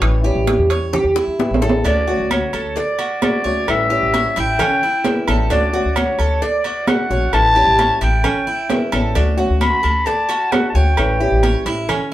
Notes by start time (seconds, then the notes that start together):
Already playing: C#5
0.00 A1 E3 G3 C#4 E4, high bongo, high conga, high timbale, claves
0.23 G3 C#4 E4 G4, high bongo, high conga
0.35 A1
0.47 high bongo, high conga, high timbale, low timbale
0.58 E2
0.70 C#5, high conga, high timbale
0.93 G4, muted nylon-string guitar stroke, high bongo, high conga, low conga, high timbale, claves
1.04 E2
1.16 E4, high bongo, high conga
1.27 E2
1.39 E3 G3 C#4 E4, high bongo, high conga
1.50 A1, low timbale
1.61 G3 C#4 E4 A4, low bongo, high conga, claves
1.70 low timbale
1.84 D2 D3 A3 C#4 D4 F#4 D5, cowbell, high conga, low agogo
2.07 A3 C#4 F#4, high conga
2.19 D2
2.31 C#5, cowbell, high conga, low timbale, low agogo, claves
2.53 D2 A4, low agogo
2.76 D5, muted nylon-string guitar stroke, cowbell, high conga
2.99 F#4, high conga, low agogo
3.22 D3 A3 C#4 F#4 D5, cowbell, high conga, low timbale, low agogo, claves
3.44 D2 A3 C#4 F#4 C#5, high conga
3.68 A1 E3 G3 C#4 E4 E5, cowbell, high conga, low agogo, claves
3.90 G3 C#4 E4 G4, high conga
4.02 A1
4.14 C#5, cowbell, high conga, low timbale, low agogo
4.36 A1 E4, cowbell, high conga, low agogo
4.40 G5
4.59 C#4, muted nylon-string guitar stroke, cowbell, high conga, low conga, low agogo, claves
4.83 E4, high conga
5.04 E3 G3 C#4 E4, cowbell, high conga, low timbale, low agogo
5.27 A1 G3 C#4 E4 A4, high conga, low agogo, claves
5.50 D2 D3 A3 C#4 D4 F#4 D5, cowbell, high conga, low agogo
5.73 A3 C#4 F#4, high conga
5.85 D2
5.96 C#5, cowbell, high conga, low timbale, low agogo, claves
6.19 D2 A4, low agogo
6.41 D5, muted nylon-string guitar stroke, cowbell, high conga
6.64 F#4, high conga, low agogo
6.87 D3 A3 C#4 F#4 F#5, cowbell, high conga, low timbale, low agogo, claves
7.10 A#1 A3 C#4 F#4 C#5, high conga
7.33 A1 E3 G3 C#4 E4 A5, cowbell, high conga, low agogo, claves
7.56 G3 C#4 E4 G4, high conga
7.67 A1
7.79 C#5, cowbell, high conga, low timbale, low agogo
8.01 A1 E4 G5, cowbell, high conga, low agogo
8.24 C#4, muted nylon-string guitar stroke, cowbell, high conga, low conga, low agogo, claves
8.47 E4, high conga
8.69 E3 G3 C#4 E4, cowbell, high conga, low timbale, low agogo
8.92 A1 G3 C#4 E4 A4, high conga, low agogo, claves
9.14 D2 D3 A3 C#4 D4 F#4, cowbell, high conga, low agogo
9.37 A3 C#4 F#4, high conga
9.49 D2
9.61 B5, cowbell, high conga, low timbale, low agogo, claves
9.83 D2 A4, low agogo
10.06 D5 A5, muted nylon-string guitar stroke, cowbell, high conga
10.29 F#4, high conga, low agogo
10.52 D3 A3 C#4 F#4 F#5, cowbell, high conga, low timbale, low agogo, claves
10.70 A5
10.74 D2 A3 C#4 F#4 C#5 G5, high conga
10.97 A1 E3 G3 C#4 E4, cowbell, high conga, low agogo, claves
11.20 G3 C#4 E4 G4, high conga
11.31 A1
11.43 C#5, cowbell, high conga, low timbale, low agogo
11.66 A1 E4, cowbell, high conga, low agogo
11.88 C#4, muted nylon-string guitar stroke, cowbell, high conga, low conga, low agogo, claves